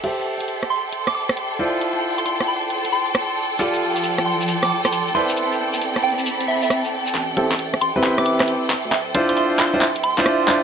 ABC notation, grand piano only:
X:1
M:4/4
L:1/16
Q:"Swing 16ths" 1/4=135
K:Am
V:1 name="Grand piano"
[GAce]12- [GAce]2 [EFcd]2- | [EFcd]16 | [FGAd]12- [FGAd]2 [EBcd]2- | [EBcd]16 |
z2 [CEGA] z4 [CEGB]6- [CEGB] z2 | z2 [DEFc]4- [DEFc] [DEFc] z3 [DEFc]3 [DEFc] z |]